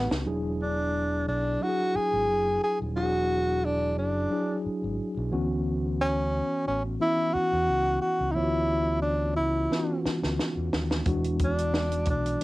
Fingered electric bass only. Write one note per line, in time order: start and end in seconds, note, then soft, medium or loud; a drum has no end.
0.11 0.23 C#2 medium
0.27 1.24 E1 medium
1.28 1.55 B1 medium
1.96 muted fingered electric bass stroke soft
2.13 2.29 G#1 medium
2.29 2.56 F#1 medium
2.82 2.97 D#1 medium
2.97 3.99 E1 loud
3.99 4.25 F#1 medium
4.66 muted fingered electric bass stroke soft
4.84 4.96 G#1 medium
5.17 5.29 B1 medium
5.32 6.39 D2 medium
6.68 6.94 A1 medium
7.35 muted fingered electric bass stroke soft
7.53 7.66 E2 medium
7.69 7.96 C#2 medium
8.21 8.33 C#2 medium
8.37 9.34 D2 medium
9.38 9.65 C#2 medium
10.06 muted fingered electric bass stroke soft
10.24 10.36 D2 medium
10.57 10.69 E2 medium
10.73 11.00 D#2 medium
11.06 12.04 E1 medium
12.07 12.34 B1 medium